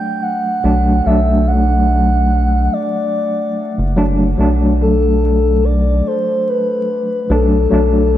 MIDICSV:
0, 0, Header, 1, 4, 480
1, 0, Start_track
1, 0, Key_signature, 2, "minor"
1, 0, Tempo, 833333
1, 609, Time_signature, 4, 2, 24, 8
1, 4710, End_track
2, 0, Start_track
2, 0, Title_t, "Soft synth lead"
2, 0, Program_c, 0, 80
2, 0, Note_on_c, 0, 79, 119
2, 130, Note_on_c, 0, 78, 108
2, 139, Note_off_c, 0, 79, 0
2, 613, Note_on_c, 0, 76, 104
2, 621, Note_off_c, 0, 78, 0
2, 850, Note_on_c, 0, 78, 118
2, 858, Note_off_c, 0, 76, 0
2, 1574, Note_on_c, 0, 74, 103
2, 1582, Note_off_c, 0, 78, 0
2, 2291, Note_off_c, 0, 74, 0
2, 2775, Note_on_c, 0, 69, 100
2, 3253, Note_on_c, 0, 74, 103
2, 3261, Note_off_c, 0, 69, 0
2, 3498, Note_on_c, 0, 72, 110
2, 3506, Note_off_c, 0, 74, 0
2, 3738, Note_on_c, 0, 71, 106
2, 3746, Note_off_c, 0, 72, 0
2, 4213, Note_off_c, 0, 71, 0
2, 4217, Note_on_c, 0, 69, 97
2, 4710, Note_off_c, 0, 69, 0
2, 4710, End_track
3, 0, Start_track
3, 0, Title_t, "Tine electric piano"
3, 0, Program_c, 1, 4
3, 0, Control_c, 1, 64, 127
3, 0, Note_on_c, 1, 54, 72
3, 0, Note_on_c, 1, 57, 69
3, 0, Note_on_c, 1, 62, 85
3, 337, Note_off_c, 1, 54, 0
3, 342, Note_off_c, 1, 57, 0
3, 347, Note_off_c, 1, 62, 0
3, 367, Note_on_c, 1, 54, 82
3, 369, Note_on_c, 1, 57, 77
3, 375, Note_on_c, 1, 62, 94
3, 582, Note_off_c, 1, 54, 0
3, 582, Note_off_c, 1, 57, 0
3, 586, Note_off_c, 1, 62, 0
3, 600, Note_on_c, 1, 54, 73
3, 610, Note_on_c, 1, 57, 73
3, 616, Note_on_c, 1, 62, 82
3, 2258, Note_off_c, 1, 54, 0
3, 2263, Note_off_c, 1, 57, 0
3, 2266, Note_off_c, 1, 62, 0
3, 2283, Note_on_c, 1, 54, 86
3, 2288, Note_on_c, 1, 57, 83
3, 2292, Note_on_c, 1, 62, 98
3, 2500, Note_off_c, 1, 54, 0
3, 2502, Note_off_c, 1, 57, 0
3, 2504, Note_off_c, 1, 62, 0
3, 2520, Note_on_c, 1, 54, 76
3, 2529, Note_on_c, 1, 57, 68
3, 2537, Note_on_c, 1, 62, 86
3, 4178, Note_off_c, 1, 54, 0
3, 4182, Note_off_c, 1, 57, 0
3, 4187, Note_off_c, 1, 62, 0
3, 4205, Note_on_c, 1, 54, 81
3, 4208, Note_on_c, 1, 57, 73
3, 4213, Note_on_c, 1, 62, 96
3, 4421, Note_off_c, 1, 54, 0
3, 4422, Note_off_c, 1, 57, 0
3, 4425, Note_off_c, 1, 62, 0
3, 4437, Note_on_c, 1, 54, 77
3, 4444, Note_on_c, 1, 57, 75
3, 4455, Note_on_c, 1, 62, 84
3, 4710, Note_off_c, 1, 54, 0
3, 4710, Note_off_c, 1, 57, 0
3, 4710, Note_off_c, 1, 62, 0
3, 4710, End_track
4, 0, Start_track
4, 0, Title_t, "Analog synth bass"
4, 0, Program_c, 2, 38
4, 368, Note_on_c, 2, 35, 92
4, 582, Note_off_c, 2, 35, 0
4, 611, Note_on_c, 2, 35, 90
4, 1549, Note_off_c, 2, 35, 0
4, 2179, Note_on_c, 2, 30, 98
4, 2507, Note_off_c, 2, 30, 0
4, 2525, Note_on_c, 2, 35, 87
4, 3466, Note_off_c, 2, 35, 0
4, 4203, Note_on_c, 2, 35, 98
4, 4419, Note_off_c, 2, 35, 0
4, 4445, Note_on_c, 2, 35, 91
4, 4710, Note_off_c, 2, 35, 0
4, 4710, End_track
0, 0, End_of_file